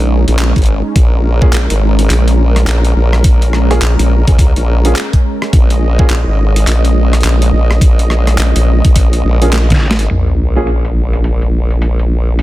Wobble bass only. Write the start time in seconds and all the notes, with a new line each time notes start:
Already playing: A#1
0.28 A#1
0.56 G#1
0.96 A#1
1.53 A#1
1.71 G#1
2.10 A#1
2.67 A#1
2.96 A#1
3.24 A#1
3.82 A#1
3.99 A#1
4.28 C#2
4.57 A#1
5.53 A#1
6.10 A#1
6.27 G#1
6.67 A#1
7.24 A#1
7.53 A#1
7.81 A#1
8.39 A#1
8.56 A#1
8.85 A#1
9.25 A#1
9.84 A1
10.11 A#1